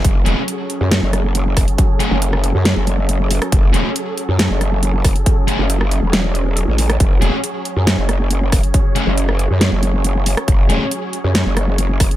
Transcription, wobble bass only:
X:1
M:4/4
L:1/16
Q:1/4=138
K:F#m
V:1 name="Wobble bass" clef=bass
F,,,2 E,,, z4 F,,2 F,,,6 z | z3 F,,,4 F,,2 F,,,6 z | F,,,2 E,,, z4 F,,2 F,,,6 z | z3 F,,,4 E,,,6 A,,,3 |
F,,,2 E,,, z4 F,,2 F,,,6 z | z3 F,,,4 F,,2 F,,,6 z | F,,,2 E,,, z4 F,,2 F,,,6 z |]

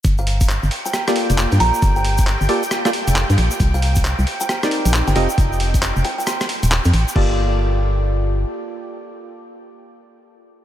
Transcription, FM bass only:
X:1
M:4/4
L:1/16
Q:"Swing 16ths" 1/4=135
K:Gm
V:1 name="FM bass" clef=bass
G,,,4- G,,, G,,, z4 z F,,,2 G,, B,,, z | G,,,4- G,,, G,,, z4 z F,,,2 G,, B,,, z | C,,4- C,, C,, z4 z B,,,2 G,,, F,,, z | F,,,4- F,,, F,,, z4 z E,,,2 F,, A,,, z |
G,,,12 z4 | z16 |]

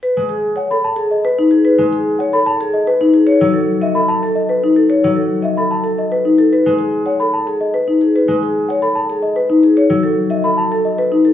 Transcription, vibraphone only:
X:1
M:3/4
L:1/16
Q:1/4=111
K:Bmix
V:1 name="Vibraphone"
B z G z c z2 G z3 G | B z G z c z2 G z3 G | c z A z d z2 A z3 A | c z A z d z2 A z3 A |
B z G z c z2 G z3 G | B z G z c z2 G z3 G | c z A z d z2 A z3 A |]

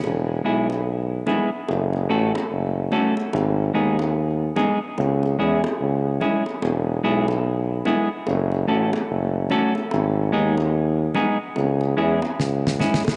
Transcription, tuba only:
X:1
M:4/4
L:1/16
Q:"Swing 16ths" 1/4=73
K:E
V:1 name="Tuba" clef=bass
E,,,2 B,,,4 z2 F,,,2 A,,, z F,,,2 z2 | G,,,2 D,,4 z2 C,,2 E,, z C,,2 z2 | E,,,2 B,,,4 z2 F,,,2 A,,, z F,,,2 z2 | G,,,2 D,,4 z2 C,,2 E,, z C,,2 z2 |]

